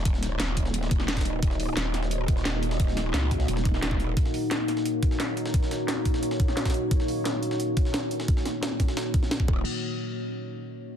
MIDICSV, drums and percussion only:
0, 0, Header, 1, 2, 480
1, 0, Start_track
1, 0, Tempo, 342857
1, 77, Time_signature, 4, 2, 24, 8
1, 15352, End_track
2, 0, Start_track
2, 0, Title_t, "Drums"
2, 76, Note_on_c, 9, 36, 122
2, 76, Note_on_c, 9, 42, 89
2, 196, Note_on_c, 9, 38, 40
2, 216, Note_off_c, 9, 36, 0
2, 216, Note_off_c, 9, 42, 0
2, 316, Note_off_c, 9, 38, 0
2, 316, Note_on_c, 9, 38, 58
2, 316, Note_on_c, 9, 42, 70
2, 456, Note_off_c, 9, 38, 0
2, 456, Note_off_c, 9, 42, 0
2, 556, Note_on_c, 9, 38, 117
2, 556, Note_on_c, 9, 42, 93
2, 676, Note_on_c, 9, 40, 57
2, 696, Note_off_c, 9, 38, 0
2, 696, Note_off_c, 9, 42, 0
2, 796, Note_on_c, 9, 36, 67
2, 796, Note_on_c, 9, 42, 76
2, 816, Note_off_c, 9, 40, 0
2, 916, Note_on_c, 9, 38, 51
2, 936, Note_off_c, 9, 36, 0
2, 936, Note_off_c, 9, 42, 0
2, 1035, Note_on_c, 9, 42, 93
2, 1036, Note_off_c, 9, 42, 0
2, 1036, Note_on_c, 9, 42, 88
2, 1056, Note_off_c, 9, 38, 0
2, 1157, Note_on_c, 9, 38, 52
2, 1176, Note_off_c, 9, 42, 0
2, 1275, Note_on_c, 9, 42, 67
2, 1276, Note_off_c, 9, 42, 0
2, 1276, Note_on_c, 9, 36, 116
2, 1276, Note_on_c, 9, 42, 71
2, 1297, Note_off_c, 9, 38, 0
2, 1395, Note_on_c, 9, 40, 50
2, 1397, Note_on_c, 9, 38, 45
2, 1416, Note_off_c, 9, 36, 0
2, 1416, Note_off_c, 9, 42, 0
2, 1515, Note_off_c, 9, 38, 0
2, 1515, Note_on_c, 9, 38, 124
2, 1515, Note_on_c, 9, 42, 91
2, 1516, Note_off_c, 9, 38, 0
2, 1516, Note_off_c, 9, 42, 0
2, 1516, Note_on_c, 9, 38, 97
2, 1516, Note_on_c, 9, 42, 81
2, 1535, Note_off_c, 9, 40, 0
2, 1635, Note_off_c, 9, 38, 0
2, 1635, Note_off_c, 9, 42, 0
2, 1635, Note_on_c, 9, 38, 84
2, 1635, Note_on_c, 9, 42, 64
2, 1636, Note_off_c, 9, 38, 0
2, 1636, Note_on_c, 9, 36, 63
2, 1636, Note_on_c, 9, 38, 38
2, 1695, Note_off_c, 9, 38, 0
2, 1695, Note_off_c, 9, 42, 0
2, 1695, Note_on_c, 9, 38, 91
2, 1695, Note_on_c, 9, 42, 65
2, 1755, Note_off_c, 9, 42, 0
2, 1755, Note_on_c, 9, 42, 65
2, 1776, Note_off_c, 9, 36, 0
2, 1835, Note_off_c, 9, 38, 0
2, 1895, Note_off_c, 9, 42, 0
2, 1995, Note_on_c, 9, 42, 93
2, 1996, Note_off_c, 9, 42, 0
2, 1996, Note_on_c, 9, 36, 126
2, 1996, Note_on_c, 9, 42, 89
2, 2115, Note_on_c, 9, 38, 43
2, 2136, Note_off_c, 9, 36, 0
2, 2136, Note_off_c, 9, 42, 0
2, 2235, Note_on_c, 9, 42, 67
2, 2236, Note_on_c, 9, 46, 83
2, 2255, Note_off_c, 9, 38, 0
2, 2375, Note_off_c, 9, 42, 0
2, 2376, Note_off_c, 9, 46, 0
2, 2475, Note_on_c, 9, 38, 117
2, 2475, Note_on_c, 9, 42, 91
2, 2594, Note_on_c, 9, 40, 54
2, 2615, Note_off_c, 9, 38, 0
2, 2615, Note_off_c, 9, 42, 0
2, 2715, Note_off_c, 9, 40, 0
2, 2715, Note_on_c, 9, 40, 60
2, 2715, Note_on_c, 9, 42, 66
2, 2716, Note_off_c, 9, 42, 0
2, 2716, Note_on_c, 9, 42, 73
2, 2837, Note_on_c, 9, 38, 45
2, 2855, Note_off_c, 9, 40, 0
2, 2856, Note_off_c, 9, 42, 0
2, 2955, Note_on_c, 9, 42, 85
2, 2956, Note_off_c, 9, 42, 0
2, 2956, Note_on_c, 9, 42, 91
2, 2977, Note_off_c, 9, 38, 0
2, 3096, Note_off_c, 9, 42, 0
2, 3195, Note_on_c, 9, 42, 63
2, 3196, Note_off_c, 9, 42, 0
2, 3196, Note_on_c, 9, 36, 113
2, 3196, Note_on_c, 9, 42, 67
2, 3316, Note_on_c, 9, 38, 37
2, 3336, Note_off_c, 9, 36, 0
2, 3336, Note_off_c, 9, 42, 0
2, 3435, Note_off_c, 9, 38, 0
2, 3435, Note_on_c, 9, 38, 121
2, 3435, Note_on_c, 9, 42, 90
2, 3436, Note_off_c, 9, 38, 0
2, 3436, Note_off_c, 9, 42, 0
2, 3436, Note_on_c, 9, 38, 112
2, 3436, Note_on_c, 9, 42, 86
2, 3576, Note_off_c, 9, 38, 0
2, 3576, Note_off_c, 9, 42, 0
2, 3676, Note_on_c, 9, 42, 69
2, 3797, Note_on_c, 9, 38, 61
2, 3816, Note_off_c, 9, 42, 0
2, 3916, Note_on_c, 9, 36, 126
2, 3916, Note_on_c, 9, 42, 83
2, 3917, Note_off_c, 9, 42, 0
2, 3917, Note_on_c, 9, 42, 90
2, 3937, Note_off_c, 9, 38, 0
2, 4037, Note_on_c, 9, 38, 40
2, 4056, Note_off_c, 9, 36, 0
2, 4057, Note_off_c, 9, 42, 0
2, 4155, Note_on_c, 9, 40, 55
2, 4155, Note_on_c, 9, 42, 66
2, 4156, Note_off_c, 9, 38, 0
2, 4156, Note_off_c, 9, 42, 0
2, 4156, Note_on_c, 9, 38, 61
2, 4156, Note_on_c, 9, 42, 70
2, 4295, Note_off_c, 9, 40, 0
2, 4296, Note_off_c, 9, 38, 0
2, 4296, Note_off_c, 9, 42, 0
2, 4396, Note_on_c, 9, 38, 118
2, 4396, Note_on_c, 9, 42, 91
2, 4516, Note_on_c, 9, 40, 57
2, 4536, Note_off_c, 9, 38, 0
2, 4536, Note_off_c, 9, 42, 0
2, 4636, Note_on_c, 9, 36, 64
2, 4636, Note_on_c, 9, 42, 62
2, 4637, Note_off_c, 9, 42, 0
2, 4637, Note_on_c, 9, 42, 73
2, 4656, Note_off_c, 9, 40, 0
2, 4757, Note_on_c, 9, 38, 49
2, 4776, Note_off_c, 9, 36, 0
2, 4777, Note_off_c, 9, 42, 0
2, 4876, Note_on_c, 9, 42, 90
2, 4897, Note_off_c, 9, 38, 0
2, 4996, Note_on_c, 9, 38, 52
2, 5016, Note_off_c, 9, 42, 0
2, 5115, Note_on_c, 9, 42, 70
2, 5116, Note_on_c, 9, 36, 106
2, 5117, Note_off_c, 9, 42, 0
2, 5117, Note_on_c, 9, 42, 63
2, 5136, Note_off_c, 9, 38, 0
2, 5236, Note_on_c, 9, 38, 46
2, 5236, Note_on_c, 9, 40, 48
2, 5256, Note_off_c, 9, 36, 0
2, 5257, Note_off_c, 9, 42, 0
2, 5356, Note_off_c, 9, 38, 0
2, 5356, Note_on_c, 9, 38, 112
2, 5356, Note_on_c, 9, 42, 84
2, 5376, Note_off_c, 9, 40, 0
2, 5476, Note_off_c, 9, 38, 0
2, 5476, Note_on_c, 9, 36, 65
2, 5476, Note_on_c, 9, 38, 39
2, 5496, Note_off_c, 9, 42, 0
2, 5596, Note_on_c, 9, 42, 64
2, 5616, Note_off_c, 9, 36, 0
2, 5616, Note_off_c, 9, 38, 0
2, 5736, Note_off_c, 9, 42, 0
2, 5836, Note_on_c, 9, 36, 121
2, 5836, Note_on_c, 9, 42, 89
2, 5957, Note_on_c, 9, 38, 43
2, 5976, Note_off_c, 9, 36, 0
2, 5976, Note_off_c, 9, 42, 0
2, 6075, Note_on_c, 9, 46, 79
2, 6076, Note_on_c, 9, 42, 65
2, 6097, Note_off_c, 9, 38, 0
2, 6215, Note_off_c, 9, 46, 0
2, 6216, Note_off_c, 9, 42, 0
2, 6315, Note_on_c, 9, 38, 114
2, 6315, Note_on_c, 9, 42, 94
2, 6316, Note_off_c, 9, 38, 0
2, 6316, Note_off_c, 9, 42, 0
2, 6316, Note_on_c, 9, 38, 112
2, 6316, Note_on_c, 9, 42, 85
2, 6437, Note_on_c, 9, 40, 51
2, 6456, Note_off_c, 9, 38, 0
2, 6456, Note_off_c, 9, 42, 0
2, 6556, Note_on_c, 9, 42, 75
2, 6557, Note_off_c, 9, 40, 0
2, 6557, Note_off_c, 9, 42, 0
2, 6557, Note_on_c, 9, 40, 51
2, 6557, Note_on_c, 9, 42, 63
2, 6677, Note_on_c, 9, 38, 46
2, 6697, Note_off_c, 9, 40, 0
2, 6697, Note_off_c, 9, 42, 0
2, 6796, Note_on_c, 9, 42, 92
2, 6797, Note_off_c, 9, 42, 0
2, 6797, Note_on_c, 9, 42, 86
2, 6817, Note_off_c, 9, 38, 0
2, 6937, Note_off_c, 9, 42, 0
2, 7036, Note_on_c, 9, 36, 110
2, 7036, Note_on_c, 9, 42, 61
2, 7157, Note_on_c, 9, 38, 36
2, 7176, Note_off_c, 9, 36, 0
2, 7176, Note_off_c, 9, 42, 0
2, 7277, Note_off_c, 9, 38, 0
2, 7277, Note_on_c, 9, 38, 109
2, 7277, Note_on_c, 9, 42, 85
2, 7417, Note_off_c, 9, 38, 0
2, 7417, Note_off_c, 9, 42, 0
2, 7516, Note_on_c, 9, 42, 60
2, 7518, Note_off_c, 9, 42, 0
2, 7518, Note_on_c, 9, 42, 67
2, 7638, Note_on_c, 9, 38, 59
2, 7658, Note_off_c, 9, 42, 0
2, 7756, Note_on_c, 9, 36, 118
2, 7756, Note_on_c, 9, 42, 95
2, 7757, Note_off_c, 9, 42, 0
2, 7757, Note_on_c, 9, 42, 91
2, 7778, Note_off_c, 9, 38, 0
2, 7877, Note_on_c, 9, 38, 42
2, 7896, Note_off_c, 9, 36, 0
2, 7897, Note_off_c, 9, 42, 0
2, 7997, Note_off_c, 9, 38, 0
2, 7997, Note_on_c, 9, 38, 61
2, 7997, Note_on_c, 9, 42, 70
2, 8137, Note_off_c, 9, 38, 0
2, 8137, Note_off_c, 9, 42, 0
2, 8236, Note_on_c, 9, 38, 114
2, 8236, Note_on_c, 9, 42, 89
2, 8356, Note_on_c, 9, 40, 51
2, 8376, Note_off_c, 9, 38, 0
2, 8376, Note_off_c, 9, 42, 0
2, 8476, Note_on_c, 9, 36, 64
2, 8476, Note_on_c, 9, 42, 74
2, 8496, Note_off_c, 9, 40, 0
2, 8597, Note_on_c, 9, 38, 50
2, 8616, Note_off_c, 9, 36, 0
2, 8616, Note_off_c, 9, 42, 0
2, 8717, Note_on_c, 9, 42, 90
2, 8737, Note_off_c, 9, 38, 0
2, 8836, Note_on_c, 9, 38, 52
2, 8857, Note_off_c, 9, 42, 0
2, 8956, Note_on_c, 9, 42, 65
2, 8957, Note_off_c, 9, 42, 0
2, 8957, Note_on_c, 9, 36, 106
2, 8957, Note_on_c, 9, 42, 72
2, 8976, Note_off_c, 9, 38, 0
2, 9076, Note_on_c, 9, 40, 44
2, 9077, Note_on_c, 9, 38, 44
2, 9097, Note_off_c, 9, 36, 0
2, 9097, Note_off_c, 9, 42, 0
2, 9195, Note_off_c, 9, 38, 0
2, 9195, Note_on_c, 9, 38, 114
2, 9195, Note_on_c, 9, 42, 90
2, 9196, Note_off_c, 9, 38, 0
2, 9196, Note_off_c, 9, 42, 0
2, 9196, Note_on_c, 9, 38, 104
2, 9196, Note_on_c, 9, 42, 75
2, 9216, Note_off_c, 9, 40, 0
2, 9316, Note_off_c, 9, 38, 0
2, 9316, Note_on_c, 9, 36, 60
2, 9316, Note_on_c, 9, 38, 36
2, 9317, Note_off_c, 9, 38, 0
2, 9317, Note_off_c, 9, 42, 0
2, 9317, Note_on_c, 9, 38, 86
2, 9317, Note_on_c, 9, 42, 67
2, 9377, Note_off_c, 9, 38, 0
2, 9377, Note_off_c, 9, 42, 0
2, 9377, Note_on_c, 9, 38, 90
2, 9377, Note_on_c, 9, 42, 66
2, 9436, Note_off_c, 9, 42, 0
2, 9436, Note_on_c, 9, 42, 66
2, 9438, Note_off_c, 9, 42, 0
2, 9438, Note_on_c, 9, 42, 67
2, 9456, Note_off_c, 9, 36, 0
2, 9517, Note_off_c, 9, 38, 0
2, 9578, Note_off_c, 9, 42, 0
2, 9676, Note_on_c, 9, 42, 94
2, 9677, Note_off_c, 9, 42, 0
2, 9677, Note_on_c, 9, 36, 119
2, 9677, Note_on_c, 9, 42, 89
2, 9798, Note_on_c, 9, 38, 43
2, 9817, Note_off_c, 9, 36, 0
2, 9817, Note_off_c, 9, 42, 0
2, 9917, Note_on_c, 9, 42, 68
2, 9917, Note_on_c, 9, 46, 81
2, 9938, Note_off_c, 9, 38, 0
2, 10057, Note_off_c, 9, 42, 0
2, 10057, Note_off_c, 9, 46, 0
2, 10156, Note_on_c, 9, 38, 111
2, 10156, Note_on_c, 9, 42, 90
2, 10277, Note_on_c, 9, 40, 54
2, 10296, Note_off_c, 9, 38, 0
2, 10296, Note_off_c, 9, 42, 0
2, 10396, Note_on_c, 9, 42, 72
2, 10397, Note_off_c, 9, 42, 0
2, 10397, Note_on_c, 9, 42, 65
2, 10417, Note_off_c, 9, 40, 0
2, 10516, Note_on_c, 9, 38, 44
2, 10537, Note_off_c, 9, 42, 0
2, 10636, Note_on_c, 9, 42, 88
2, 10637, Note_off_c, 9, 42, 0
2, 10637, Note_on_c, 9, 42, 95
2, 10656, Note_off_c, 9, 38, 0
2, 10777, Note_off_c, 9, 42, 0
2, 10875, Note_on_c, 9, 42, 72
2, 10876, Note_off_c, 9, 42, 0
2, 10876, Note_on_c, 9, 42, 67
2, 10877, Note_on_c, 9, 36, 99
2, 10995, Note_on_c, 9, 38, 36
2, 11016, Note_off_c, 9, 42, 0
2, 11017, Note_off_c, 9, 36, 0
2, 11114, Note_off_c, 9, 38, 0
2, 11114, Note_on_c, 9, 38, 110
2, 11114, Note_on_c, 9, 42, 81
2, 11117, Note_off_c, 9, 38, 0
2, 11117, Note_on_c, 9, 38, 111
2, 11254, Note_off_c, 9, 42, 0
2, 11257, Note_off_c, 9, 38, 0
2, 11354, Note_on_c, 9, 42, 65
2, 11357, Note_off_c, 9, 42, 0
2, 11357, Note_on_c, 9, 42, 65
2, 11475, Note_on_c, 9, 38, 60
2, 11497, Note_off_c, 9, 42, 0
2, 11596, Note_on_c, 9, 42, 91
2, 11597, Note_on_c, 9, 36, 119
2, 11615, Note_off_c, 9, 38, 0
2, 11717, Note_on_c, 9, 38, 40
2, 11736, Note_off_c, 9, 42, 0
2, 11737, Note_off_c, 9, 36, 0
2, 11836, Note_on_c, 9, 40, 57
2, 11836, Note_on_c, 9, 42, 69
2, 11837, Note_off_c, 9, 38, 0
2, 11837, Note_off_c, 9, 42, 0
2, 11837, Note_on_c, 9, 38, 59
2, 11837, Note_on_c, 9, 42, 70
2, 11976, Note_off_c, 9, 40, 0
2, 11977, Note_off_c, 9, 38, 0
2, 11977, Note_off_c, 9, 42, 0
2, 12076, Note_on_c, 9, 38, 113
2, 12077, Note_off_c, 9, 38, 0
2, 12077, Note_on_c, 9, 38, 120
2, 12077, Note_on_c, 9, 42, 92
2, 12196, Note_on_c, 9, 40, 57
2, 12217, Note_off_c, 9, 38, 0
2, 12217, Note_off_c, 9, 42, 0
2, 12316, Note_off_c, 9, 40, 0
2, 12316, Note_on_c, 9, 40, 56
2, 12316, Note_on_c, 9, 42, 69
2, 12317, Note_off_c, 9, 42, 0
2, 12317, Note_on_c, 9, 36, 61
2, 12317, Note_on_c, 9, 42, 75
2, 12438, Note_on_c, 9, 38, 53
2, 12456, Note_off_c, 9, 40, 0
2, 12457, Note_off_c, 9, 36, 0
2, 12457, Note_off_c, 9, 42, 0
2, 12556, Note_on_c, 9, 42, 92
2, 12557, Note_off_c, 9, 38, 0
2, 12557, Note_off_c, 9, 42, 0
2, 12557, Note_on_c, 9, 38, 111
2, 12557, Note_on_c, 9, 42, 82
2, 12697, Note_off_c, 9, 38, 0
2, 12697, Note_off_c, 9, 42, 0
2, 12795, Note_on_c, 9, 42, 71
2, 12797, Note_off_c, 9, 42, 0
2, 12797, Note_on_c, 9, 36, 106
2, 12797, Note_on_c, 9, 42, 63
2, 12916, Note_on_c, 9, 40, 50
2, 12918, Note_on_c, 9, 38, 39
2, 12937, Note_off_c, 9, 36, 0
2, 12937, Note_off_c, 9, 42, 0
2, 13036, Note_off_c, 9, 38, 0
2, 13036, Note_on_c, 9, 38, 107
2, 13038, Note_off_c, 9, 38, 0
2, 13038, Note_on_c, 9, 38, 112
2, 13038, Note_on_c, 9, 42, 84
2, 13056, Note_off_c, 9, 40, 0
2, 13156, Note_off_c, 9, 38, 0
2, 13156, Note_on_c, 9, 38, 36
2, 13157, Note_on_c, 9, 36, 62
2, 13178, Note_off_c, 9, 42, 0
2, 13276, Note_off_c, 9, 36, 0
2, 13276, Note_on_c, 9, 36, 116
2, 13296, Note_off_c, 9, 38, 0
2, 13416, Note_off_c, 9, 36, 0
2, 15352, End_track
0, 0, End_of_file